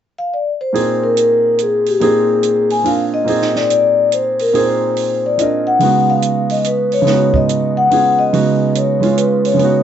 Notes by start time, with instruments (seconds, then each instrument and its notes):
0.18 vibraphone F5
0.34 vibraphone D5
0.61 vibraphone C5
0.73 grand piano A#2 A#3 C4 D#4 G#4, open hi-hat
1.03 vibraphone A#4
1.17 vibraphone A#4, closed hi-hat
1.59 vibraphone G#4, closed hi-hat
1.86 vibraphone G4, open hi-hat
2.00 grand piano A#2 A#3 C4 D#4 G#4, vibraphone G#4, open hi-hat
2.43 closed hi-hat
2.70 vibraphone G#5, open hi-hat
2.83 grand piano C4 D4 F4 A#4, vibraphone F5, open hi-hat
3.14 vibraphone D#5
3.24 grand piano A#2 A#3 C4 D#4, open hi-hat
3.29 grand piano G#4
3.42 snare
3.56 vibraphone D5, snare
3.70 vibraphone D5, closed hi-hat
4.12 vibraphone C5, closed hi-hat
4.39 vibraphone A#4, open hi-hat
4.53 grand piano A#2 A#3 C4 D#4 G#4, vibraphone C5, open hi-hat
4.97 open hi-hat
5.26 vibraphone D5
5.38 grand piano C4 D4 F4 A#4, vibraphone D#5, closed hi-hat
5.67 vibraphone F#5
5.79 grand piano C#3 G#3 B3, open hi-hat
5.83 grand piano D#4 F#4
6.10 vibraphone F5
6.22 closed hi-hat
6.50 vibraphone D#5, open hi-hat
6.64 vibraphone B4, closed hi-hat
6.92 vibraphone C#5, open hi-hat
7.02 grand piano C#3 G#3
7.07 grand piano B3 D#4, snare, open hi-hat
7.13 grand piano F#4
7.34 vibraphone D#5, kick
7.49 closed hi-hat
7.77 vibraphone F#5
7.90 grand piano B3 C#4 F4 G#4, open hi-hat
8.19 vibraphone D#5
8.33 grand piano C#3 G#3 B3 D#4 F#4, open hi-hat
8.75 vibraphone C#5, closed hi-hat
9.01 grand piano G#3 C#4 F4, open hi-hat
9.17 vibraphone B4, closed hi-hat
9.45 vibraphone C#5, open hi-hat
9.54 grand piano C#3 G#3
9.59 grand piano B3 D#4, open hi-hat
9.65 grand piano F#4